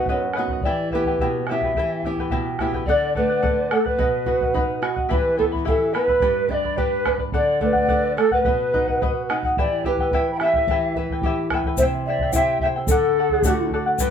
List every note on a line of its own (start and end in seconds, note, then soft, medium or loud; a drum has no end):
0.00 0.26 B3 soft
0.00 0.26 D#4 soft
0.00 0.26 F#4 medium
0.00 0.32 B4 medium
0.06 0.63 F#2 medium
0.06 0.33 B4 medium
0.06 0.35 D#5 medium
0.06 0.35 F#5 medium
0.06 bombo low medium
0.33 0.49 B4 medium
0.33 0.50 D#5 medium
0.33 0.50 F#5 medium
0.33 bombo rim soft
0.38 0.60 B3 soft
0.38 0.60 D#4 soft
0.38 0.60 F#4 soft
0.48 0.65 F#5 soft
0.48 bombo low soft
0.53 0.65 D#5 soft
0.61 0.89 D5 medium
0.61 0.90 E5 medium
0.61 0.91 G5 medium
0.61 bombo low medium
0.66 1.19 E3 medium
0.66 0.91 E4 medium
0.66 0.93 G4 medium
0.66 0.92 B4 medium
0.91 1.06 E4 medium
0.91 1.06 B4 medium
0.91 1.50 B4 medium
0.91 1.06 E5 soft
0.91 1.06 G5 soft
0.91 bombo low soft
0.95 1.38 B3 soft
0.95 1.38 E4 soft
0.95 1.38 G4 medium
1.04 1.20 B4 soft
1.04 1.21 G5 soft
1.04 bombo low soft
1.08 1.20 E4 soft
1.18 1.75 B2 medium
1.18 1.48 E4 medium
1.18 1.48 G4 medium
1.18 1.49 B4 medium
1.18 1.48 E5 medium
1.18 1.49 G5 medium
1.18 bombo low medium
1.47 1.62 E4 medium
1.47 1.63 B4 medium
1.47 2.04 E5 medium
1.47 1.62 E5 medium
1.47 1.63 G5 medium
1.47 bombo rim soft
1.51 1.72 B3 soft
1.51 1.72 E4 soft
1.51 1.72 G4 medium
1.61 1.76 E4 soft
1.61 1.76 B4 soft
1.61 1.76 G5 soft
1.61 bombo low soft
1.75 2.04 E4 medium
1.75 2.04 G4 medium
1.75 2.05 B4 medium
1.75 2.03 E5 medium
1.75 2.05 G5 medium
1.75 bombo low medium
1.79 2.32 E3 medium
2.03 2.50 B3 soft
2.03 2.18 E4 soft
2.03 2.50 E4 soft
2.03 2.50 G4 soft
2.03 2.19 B4 soft
2.03 2.18 E5 soft
2.03 2.19 G5 medium
2.03 bombo low soft
2.17 2.31 E4 soft
2.17 2.31 B4 soft
2.17 2.31 G5 medium
2.17 bombo low soft
2.30 2.86 B2 medium
2.30 2.59 E4 medium
2.30 2.59 G4 medium
2.30 2.60 B4 medium
2.30 2.59 E5 medium
2.30 2.60 G5 medium
2.30 bombo low medium
2.59 2.82 B3 soft
2.59 2.74 E4 medium
2.59 2.83 E4 soft
2.59 2.83 G4 soft
2.59 2.74 B4 medium
2.59 2.74 E5 medium
2.59 2.73 G5 medium
2.59 bombo rim soft
2.59 bombo low soft
2.73 2.89 E4 soft
2.73 2.88 B4 soft
2.73 2.88 G5 medium
2.73 bombo low soft
2.86 3.42 D3 medium
2.86 3.14 A4 medium
2.86 3.13 D5 loud
2.86 3.14 D5 medium
2.86 3.15 D5 medium
2.86 3.15 F#5 medium
2.86 bombo low medium
3.14 3.43 A3 medium
3.14 3.29 A4 medium
3.14 3.75 B4 medium
3.14 3.75 D5 medium
3.14 3.30 D5 soft
3.14 3.28 F#5 medium
3.14 bombo low soft
3.29 3.41 D5 soft
3.29 3.42 F#5 soft
3.42 3.70 D3 medium
3.42 3.70 A4 medium
3.42 3.71 D5 medium
3.42 3.71 F#5 medium
3.42 bombo low medium
3.71 3.99 A3 soft
3.71 3.85 A4 medium
3.71 3.87 A4 medium
3.71 3.89 A4 medium
3.71 3.86 D5 medium
3.71 3.84 F#5 medium
3.71 bombo rim soft
3.85 4.83 B4 medium
3.85 4.84 B4 medium
3.85 3.99 D5 soft
3.85 3.98 F#5 medium
3.85 bombo low medium
3.98 5.07 B2 medium
3.98 4.25 B4 medium
3.98 4.26 D#5 medium
3.98 4.26 F#5 medium
3.98 bombo low medium
4.26 4.54 F#4 medium
4.26 4.41 B4 soft
4.26 4.41 D#5 soft
4.26 4.40 F#5 medium
4.26 bombo low soft
4.41 4.53 D#5 soft
4.41 4.54 F#5 soft
4.41 bombo low medium
4.54 4.82 D#4 medium
4.54 4.81 B4 medium
4.54 4.81 D#5 medium
4.54 4.81 F#5 medium
4.54 bombo low medium
4.82 5.10 F#4 medium
4.82 4.96 B4 medium
4.82 4.96 D#5 medium
4.82 4.95 F#5 medium
4.82 bombo rim medium
4.96 5.09 D#5 soft
4.96 5.09 F#5 soft
4.96 bombo low medium
5.09 5.66 E3 medium
5.09 5.36 E4 medium
5.09 5.38 G4 medium
5.09 5.37 B4 medium
5.09 5.37 E5 medium
5.09 5.36 G5 medium
5.09 5.37 B5 medium
5.09 bombo low medium
5.37 5.66 B3 medium
5.37 5.52 E4 soft
5.37 5.45 A4 medium
5.37 5.52 E5 medium
5.37 5.52 G5 soft
5.37 5.51 B5 soft
5.37 bombo low soft
5.52 5.64 E4 soft
5.52 5.65 E5 soft
5.52 5.64 B5 medium
5.52 bombo low soft
5.65 5.94 E3 medium
5.65 5.93 E4 medium
5.65 5.93 G4 medium
5.65 5.97 A4 medium
5.65 5.92 E5 medium
5.65 5.72 F#5 medium
5.65 5.92 G5 medium
5.65 5.93 B5 medium
5.65 bombo low medium
5.71 5.95 E5 medium
5.93 6.22 B3 soft
5.93 6.08 E4 medium
5.93 6.05 A#4 medium
5.93 6.53 B4 medium
5.93 6.08 E5 medium
5.93 6.08 G5 medium
5.93 6.07 B5 medium
5.93 bombo rim soft
6.05 6.52 B4 medium
6.05 6.21 B5 medium
6.05 bombo low soft
6.09 6.21 E4 soft
6.09 6.22 E5 soft
6.20 7.30 G2 medium
6.20 6.50 G4 medium
6.20 6.50 B4 medium
6.20 6.50 D5 medium
6.20 6.49 G5 medium
6.20 6.50 B5 medium
6.20 bombo low medium
6.49 6.76 D4 medium
6.49 6.64 B4 medium
6.49 6.80 D5 medium
6.49 6.63 D5 medium
6.49 6.56 E5 medium
6.49 6.64 G5 soft
6.49 6.63 B5 soft
6.49 bombo low soft
6.55 6.78 D5 medium
6.64 6.77 B4 soft
6.64 6.77 D5 soft
6.64 6.77 B5 soft
6.64 bombo low soft
6.77 7.05 G4 soft
6.77 7.06 G4 medium
6.77 7.19 B4 medium
6.77 7.04 B4 medium
6.77 7.20 B4 medium
6.77 7.05 D5 medium
6.77 7.04 G5 medium
6.77 7.06 B5 medium
6.77 bombo low medium
7.05 7.33 D4 soft
7.05 7.19 B4 medium
7.05 7.19 D5 medium
7.05 7.19 G5 medium
7.05 7.18 B5 medium
7.05 bombo rim soft
7.05 bombo low soft
7.18 7.34 B4 soft
7.18 7.33 D5 soft
7.18 7.33 B5 soft
7.18 bombo low soft
7.32 7.89 D3 medium
7.32 7.60 A4 medium
7.32 7.61 D5 medium
7.32 7.60 D5 medium
7.32 7.61 F#5 medium
7.32 bombo low medium
7.61 7.88 A3 medium
7.61 7.74 A4 medium
7.61 8.15 B4 medium
7.61 8.13 D5 medium
7.61 7.73 D5 soft
7.61 7.72 F#5 soft
7.61 bombo low soft
7.73 7.87 D5 soft
7.73 7.88 F#5 soft
7.73 bombo low soft
7.88 8.17 D3 medium
7.88 8.16 A4 medium
7.88 8.17 D5 medium
7.88 8.17 F#5 medium
7.88 bombo low medium
8.17 8.44 A3 soft
8.17 8.31 A4 medium
8.17 8.35 A4 medium
8.17 8.34 A4 medium
8.17 8.31 D5 medium
8.17 8.31 F#5 medium
8.17 bombo rim soft
8.31 9.29 B4 medium
8.31 8.44 D5 soft
8.31 8.44 F#5 soft
8.31 bombo low medium
8.45 9.53 B2 medium
8.45 8.71 B4 medium
8.45 8.72 D#5 medium
8.45 8.73 F#5 medium
8.45 bombo low medium
8.72 9.00 D#4 medium
8.72 8.86 B4 soft
8.72 8.87 D#5 medium
8.72 8.86 F#5 medium
8.72 bombo low soft
8.87 9.01 D#5 soft
8.87 9.01 F#5 soft
8.87 bombo low soft
9.02 9.29 F#4 medium
9.02 9.28 B4 medium
9.02 9.28 D#5 medium
9.02 9.29 F#5 medium
9.02 bombo low medium
9.29 9.56 D#4 medium
9.29 9.43 B4 medium
9.29 9.43 D#5 medium
9.29 9.43 F#5 medium
9.29 bombo rim soft
9.43 9.58 D#5 soft
9.43 9.57 F#5 soft
9.43 bombo low medium
9.57 10.66 E3 medium
9.57 9.84 E4 medium
9.57 9.85 G4 medium
9.57 9.84 B4 medium
9.57 9.88 D5 medium
9.57 9.83 E5 medium
9.57 9.84 G5 medium
9.57 9.87 G5 medium
9.57 bombo low medium
9.84 9.98 E4 medium
9.84 10.12 G4 medium
9.84 10.31 B4 medium
9.84 9.99 B4 medium
9.84 10.34 B4 medium
9.84 9.98 E5 soft
9.84 9.99 G5 medium
9.84 bombo low soft
9.97 10.13 G5 medium
9.97 bombo low medium
10.02 10.13 E4 soft
10.02 10.14 B4 soft
10.11 10.39 E4 medium
10.11 10.41 E4 medium
10.11 10.40 G4 medium
10.11 10.41 B4 medium
10.11 10.41 E5 medium
10.11 10.41 G5 medium
10.11 bombo low medium
10.32 10.41 G5 medium
10.32 10.40 B5 medium
10.39 10.67 G4 medium
10.39 10.95 E5 medium
10.39 bombo rim soft
10.43 10.56 E4 medium
10.43 10.56 B4 medium
10.43 10.55 E5 medium
10.43 10.55 G5 medium
10.54 10.69 B4 soft
10.54 10.69 G5 soft
10.54 bombo low medium
10.58 10.69 E4 soft
10.67 11.75 E3 medium
10.67 10.97 E4 medium
10.67 10.96 G4 medium
10.67 10.97 B4 medium
10.67 10.96 E5 medium
10.67 10.97 G5 medium
10.67 bombo low medium
10.95 11.10 E4 soft
10.95 11.23 B4 medium
10.95 11.10 B4 soft
10.95 11.10 E5 medium
10.95 11.11 G5 soft
10.95 bombo low soft
11.09 11.25 B4 soft
11.09 11.24 G5 medium
11.09 bombo low soft
11.13 11.25 E4 soft
11.22 11.52 E4 medium
11.22 11.50 G4 soft
11.22 11.51 G4 medium
11.22 11.52 E5 medium
11.22 bombo low medium
11.26 11.52 B4 medium
11.26 11.52 G5 medium
11.50 11.66 E4 medium
11.50 11.77 B4 soft
11.50 11.66 B4 medium
11.50 11.66 E5 medium
11.50 bombo rim medium
11.50 bombo low soft
11.55 11.66 G5 medium
11.64 11.80 B4 soft
11.64 11.79 G5 medium
11.64 bombo low medium
11.68 11.80 E4 soft
11.77 12.86 C3 medium
11.77 11.84 C5 medium
11.77 11.85 E5 medium
11.77 bombo low medium
11.77 shaker medium
11.82 12.07 E4 medium
11.82 12.08 G4 medium
11.82 12.08 C5 medium
11.82 12.07 E5 medium
11.82 12.08 G5 medium
12.06 12.21 E4 medium
12.06 12.21 C5 medium
12.06 12.36 D5 medium
12.06 12.34 E5 medium
12.06 12.21 E5 medium
12.06 12.21 G5 medium
12.19 12.35 C5 soft
12.19 12.35 G5 soft
12.19 bombo low medium
12.24 12.34 E4 soft
12.32 12.86 C4 soft
12.32 12.87 E4 soft
12.32 12.62 E4 medium
12.32 12.87 G4 medium
12.32 12.62 G4 medium
12.32 12.62 C5 medium
12.32 12.60 E5 loud
12.32 12.62 E5 medium
12.32 12.61 G5 medium
12.32 bombo low medium
12.32 shaker loud
12.37 12.63 G5 medium
12.59 12.67 E5 medium
12.59 12.68 G5 medium
12.59 bombo low medium
12.64 12.76 E4 medium
12.64 12.76 C5 medium
12.64 12.76 E5 medium
12.64 12.75 G5 medium
12.76 12.90 E4 soft
12.76 12.89 C5 soft
12.76 12.89 G5 medium
12.87 13.95 D3 medium
12.87 13.67 A4 medium
12.87 13.68 A4 medium
12.87 13.17 A4 medium
12.87 bombo low medium
12.87 shaker loud
12.91 13.17 D5 medium
12.91 13.18 F#5 medium
13.18 13.31 A4 medium
13.18 13.31 D5 medium
13.18 13.32 F#5 medium
13.29 13.45 F#5 soft
13.29 bombo low soft
13.34 13.45 D5 soft
13.42 13.97 A3 soft
13.42 13.97 D4 soft
13.42 13.98 F#4 medium
13.42 13.72 A4 medium
13.42 bombo low medium
13.42 shaker medium
13.47 13.73 D5 medium
13.47 13.73 F#5 medium
13.70 13.86 A4 medium
13.70 13.85 F#5 medium
13.70 bombo low soft
13.74 13.86 D5 medium
13.86 13.99 D5 soft
13.86 13.99 F#5 soft
13.98 14.10 G2 medium
13.98 14.10 G4 medium
13.98 14.10 B4 medium
13.98 14.10 D5 medium
13.98 14.10 G5 medium
13.98 14.10 B5 medium
13.98 bombo low medium
13.98 shaker loud